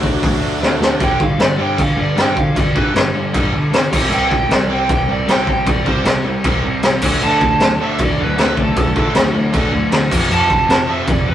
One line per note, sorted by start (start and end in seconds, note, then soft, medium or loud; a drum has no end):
0.00 0.22 D2 medium
0.00 0.41 D3 medium
0.00 0.99 F#3 medium
0.00 0.41 A3 loud
0.00 0.60 A3 medium
0.00 0.40 D4 loud
0.00 0.60 D4 medium
0.00 0.78 F#4 medium
0.00 0.77 F#5 medium
0.00 kick medium
0.05 0.58 D3 medium
0.23 0.41 D2 loud
0.23 kick loud
0.23 open hi-hat medium
0.41 0.60 D2 medium
0.41 0.59 D3 medium
0.41 0.60 A3 medium
0.41 0.60 D4 medium
0.61 0.79 D2 medium
0.61 0.99 D3 medium
0.61 0.99 A3 medium
0.61 1.00 D4 medium
0.61 snare medium
0.80 0.99 D2 medium
0.80 snare loud
1.00 1.20 G2 medium
1.00 1.16 G2 medium
1.00 1.20 D3 loud
1.00 1.20 G3 loud
1.00 1.21 G5 medium
1.00 kick loud
1.00 crash medium
1.20 1.36 G2 medium
1.20 1.39 G2 medium
1.20 1.39 D3 medium
1.20 1.40 G3 loud
1.20 1.41 F5 medium
1.20 kick loud
1.38 1.55 G2 medium
1.38 1.58 G2 medium
1.38 1.58 D3 medium
1.38 1.60 G3 loud
1.38 1.59 D5 medium
1.38 snare loud
1.38 crash medium
1.58 1.74 G2 medium
1.58 1.77 G2 medium
1.58 1.78 D3 medium
1.58 1.79 G3 medium
1.62 1.80 G5 medium
1.78 1.97 G2 medium
1.78 1.94 G2 medium
1.78 1.97 D3 medium
1.78 1.98 G3 medium
1.78 1.99 F5 medium
1.78 kick loud
1.78 crash medium
1.97 2.13 G2 medium
1.97 2.16 G2 medium
1.97 2.16 D3 medium
1.97 2.17 G3 medium
2.01 2.18 D5 medium
2.16 2.48 G2 loud
2.16 2.35 G2 medium
2.16 2.35 D3 loud
2.16 2.37 G3 loud
2.16 2.39 G5 medium
2.16 snare medium
2.16 crash medium
2.36 2.55 G2 medium
2.36 2.56 D3 medium
2.36 2.57 G3 medium
2.36 2.57 F5 medium
2.36 kick medium
2.56 2.72 G2 loud
2.56 2.74 G2 medium
2.56 2.74 D3 medium
2.56 2.75 G3 medium
2.56 2.76 D5 medium
2.56 kick loud
2.56 crash medium
2.75 2.94 G2 medium
2.75 2.92 G2 medium
2.75 2.93 D3 medium
2.75 2.95 G3 medium
2.75 2.95 B4 loud
2.75 kick medium
2.95 3.13 G2 medium
2.95 3.11 G2 loud
2.95 3.14 D3 loud
2.95 3.14 G3 loud
2.95 snare loud
2.95 crash medium
3.14 3.30 G2 medium
3.14 3.33 G2 medium
3.14 3.33 D3 medium
3.14 3.34 G3 medium
3.34 3.52 G2 medium
3.34 3.50 G2 loud
3.34 3.53 D3 loud
3.34 3.54 G3 loud
3.34 kick loud
3.34 crash medium
3.53 3.69 G2 medium
3.53 3.73 G2 medium
3.53 3.73 D3 medium
3.53 3.74 G3 medium
3.72 3.92 G2 medium
3.72 3.88 D3 medium
3.72 3.92 D3 medium
3.72 3.93 G3 loud
3.72 snare loud
3.72 crash medium
3.93 4.08 C2 medium
3.93 4.12 C3 medium
3.93 4.13 G3 medium
3.93 4.13 C4 loud
3.93 kick loud
3.93 crash loud
4.10 4.26 C2 loud
4.10 4.30 C3 medium
4.10 4.31 G3 medium
4.10 4.31 C4 loud
4.10 4.32 G5 loud
4.10 crash medium
4.31 4.47 C2 medium
4.31 4.50 C3 loud
4.31 4.50 G3 medium
4.31 4.51 C4 loud
4.31 4.52 G5 loud
4.31 kick medium
4.48 4.65 C2 loud
4.48 4.69 C3 loud
4.48 4.69 G3 loud
4.48 4.70 C4 loud
4.48 snare loud
4.48 crash medium
4.54 4.71 D5 medium
4.68 4.85 C2 loud
4.68 4.88 C3 medium
4.68 4.88 G3 medium
4.68 4.88 C4 medium
4.73 4.90 G5 medium
4.89 5.05 C2 loud
4.89 5.08 C3 medium
4.89 5.08 G3 medium
4.89 5.08 C4 medium
4.89 5.10 G5 loud
4.89 kick loud
4.89 crash medium
5.07 5.23 C2 medium
5.07 5.27 C3 medium
5.07 5.27 G3 medium
5.07 5.27 C4 medium
5.12 5.29 D5 medium
5.26 5.58 C2 medium
5.26 5.45 C3 medium
5.26 5.46 G3 loud
5.26 5.46 C4 loud
5.26 snare loud
5.26 crash medium
5.31 5.48 G5 medium
5.47 5.65 C3 medium
5.47 5.66 G3 medium
5.47 5.66 C4 loud
5.47 5.67 G5 medium
5.47 kick medium
5.66 5.82 C2 medium
5.66 5.85 C3 medium
5.66 5.85 G3 loud
5.66 5.86 C4 loud
5.66 5.86 D5 medium
5.66 kick loud
5.66 crash medium
5.86 6.02 C2 medium
5.86 6.04 C3 medium
5.86 6.04 G3 medium
5.86 6.04 C4 medium
5.86 6.06 C5 loud
5.86 kick loud
6.05 6.21 C2 loud
6.05 6.24 C3 loud
6.05 6.24 G3 loud
6.05 6.24 C4 loud
6.05 snare loud
6.05 crash medium
6.24 6.40 C2 loud
6.24 6.45 C3 medium
6.24 6.45 G3 medium
6.24 6.46 C4 medium
6.44 6.60 C2 medium
6.44 6.64 C3 medium
6.44 6.65 G3 medium
6.44 6.65 C4 medium
6.44 kick loud
6.44 crash medium
6.63 6.79 C2 medium
6.63 6.83 C3 medium
6.63 6.84 G3 medium
6.63 6.84 C4 medium
6.83 6.99 C2 medium
6.83 7.02 C3 loud
6.83 7.02 G3 loud
6.83 7.02 C4 loud
6.83 snare loud
6.83 crash medium
7.02 7.18 D2 medium
7.02 7.24 D3 medium
7.02 7.21 F#3 medium
7.02 7.23 A3 medium
7.02 7.24 D4 loud
7.02 kick loud
7.02 crash loud
7.22 7.37 D2 medium
7.22 7.42 D3 medium
7.22 7.40 F#3 medium
7.22 7.42 A3 medium
7.22 7.43 D4 loud
7.22 7.79 A5 loud
7.22 crash medium
7.41 7.57 D2 medium
7.41 7.61 D3 medium
7.41 7.59 F#3 medium
7.41 7.62 A3 loud
7.41 7.63 D4 loud
7.41 kick medium
7.60 7.76 D2 loud
7.60 7.80 D3 medium
7.60 7.78 F#3 medium
7.60 7.81 A3 medium
7.60 7.81 D4 loud
7.60 snare loud
7.60 crash medium
7.80 7.96 D2 medium
7.80 7.99 D3 medium
7.80 7.99 F#3 medium
7.80 8.01 A3 medium
7.80 8.00 D4 medium
7.80 8.00 E5 medium
7.98 8.15 D2 medium
7.98 8.19 D3 medium
7.98 8.17 F#3 medium
7.98 8.20 A3 medium
7.98 8.19 D4 loud
7.98 kick loud
7.98 crash medium
8.04 8.20 D5 loud
8.19 8.34 D2 medium
8.19 8.37 D3 medium
8.19 8.36 F#3 medium
8.19 8.39 A3 medium
8.19 8.38 D4 medium
8.19 8.39 B4 medium
8.38 8.69 D2 loud
8.38 8.57 D3 loud
8.38 8.56 F#3 loud
8.38 8.58 A3 medium
8.38 8.57 D4 loud
8.38 8.58 B4 medium
8.38 snare loud
8.38 crash medium
8.57 8.75 D3 medium
8.57 8.75 F#3 medium
8.57 8.76 A3 medium
8.57 8.76 D4 medium
8.57 kick medium
8.62 9.35 A4 loud
8.76 8.92 D2 medium
8.76 8.96 D3 medium
8.76 8.95 F#3 medium
8.76 8.97 A3 loud
8.76 8.96 D4 loud
8.76 kick loud
8.76 crash medium
8.96 9.11 D2 medium
8.96 9.14 D3 medium
8.96 9.14 F#3 loud
8.96 9.15 A3 medium
8.96 9.15 D4 medium
8.96 kick loud
9.15 9.31 D2 loud
9.15 9.33 D3 medium
9.15 9.33 F#3 medium
9.15 9.35 A3 loud
9.15 9.34 D4 loud
9.15 snare loud
9.15 crash medium
9.34 9.50 D2 loud
9.34 9.52 D3 medium
9.34 9.51 F#3 medium
9.34 9.53 A3 medium
9.34 9.52 D4 medium
9.53 9.69 D2 loud
9.53 9.71 D3 loud
9.53 9.71 F#3 loud
9.53 9.72 A3 loud
9.53 9.72 D4 loud
9.53 kick loud
9.53 crash medium
9.72 9.89 D2 medium
9.72 9.91 D3 medium
9.72 9.90 F#3 medium
9.72 9.92 A3 medium
9.72 9.92 D4 medium
9.91 10.07 D2 medium
9.91 10.10 D3 loud
9.91 10.09 F#3 medium
9.91 10.12 A3 loud
9.91 10.11 D4 loud
9.91 snare loud
9.91 crash medium
10.11 10.27 F2 loud
10.11 10.31 F2 loud
10.11 10.30 C3 medium
10.11 10.31 F3 loud
10.11 kick loud
10.11 crash loud
10.30 10.46 F2 loud
10.30 10.50 F2 medium
10.30 10.50 C3 loud
10.30 10.51 F3 loud
10.30 10.88 A5 loud
10.30 crash medium
10.50 10.65 F2 medium
10.50 10.69 F2 medium
10.50 10.68 C3 medium
10.50 10.70 F3 loud
10.50 kick medium
10.68 10.84 F2 loud
10.68 10.89 F2 loud
10.68 10.88 C3 loud
10.68 10.90 F3 loud
10.68 snare loud
10.68 crash medium
10.87 11.03 F2 medium
10.87 11.07 F2 medium
10.87 11.07 C3 medium
10.87 11.08 F3 loud
10.87 11.08 E5 medium
11.08 11.27 F2 medium
11.08 11.23 F2 loud
11.08 11.26 C3 medium
11.08 11.28 F3 loud
11.08 11.28 D5 loud
11.08 kick loud
11.08 crash medium
11.25 11.35 F2 medium
11.25 11.35 C3 medium
11.25 11.35 F3 medium
11.25 11.35 B4 medium